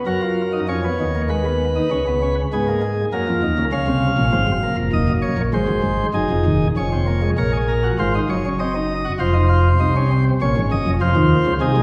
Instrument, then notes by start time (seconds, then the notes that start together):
pipe organ
0.06 F#2 F#3 F#4 A#4
0.22 F4
0.53 D#4
0.68 F2 F3 C#4 C#5
0.84 B3
1.00 D#2 D#3
1.15 A#3
1.29 G#3 B4
1.45 B3
1.76 D#4
1.91 C#2 C#3 C#4
2.07 B3
2.22 C#4
2.53 G#2 G#3 B3 G#4
2.68 A#3
2.82 G#3
3.13 F#2 F#3 A#3 A#4
3.28 F2 F3
3.43 D#2 D#3
3.58 C#2 C#3
3.72 C#2 C#3 C#4 F5
3.87 C2 C3
4.18 A#1 A#2
4.33 G#1 G#2 C4
4.48 F#1 F#2
4.63 A#3
4.77 F1 F2
4.93 D#1 D#2 D#5
5.08 F#1 F#2
5.22 C#5
5.38 A#1 A#2
5.53 G#1 G#2 G#3 C5
5.68 F#1 F#2
5.83 G#1 G#2
6.14 F#1 F#2 D#4 G#4
6.30 F1 F2
6.45 D#1 D#2
6.77 F1 F2 C#4 C#5
6.92 C4
7.07 A#3
7.22 G#3
7.38 A#1 A#2 A#4 C#5
7.53 G#4
7.68 A#4
7.83 F#4
7.99 G#1 G#2 F4 C5
8.15 D#4
8.30 F#1 F#2 C#5
8.45 C#4
8.59 C4 D#5
8.75 D#4
9.05 F#4
9.20 F1 F2 F4 C5
9.34 D#4
9.49 F4
9.80 C2 C3 D#4
9.96 C#4
10.12 C4
10.41 A#1 A#2 C#4 C#5
10.57 G#1 G#2
10.72 F#1 F#2 D#5
10.87 F1 F2
11.01 F2 F3 F4 C5
11.16 D#2 D#3
11.46 C#2 C#3
11.61 C2 C3 D#4 G#4
11.77 A#1 A#2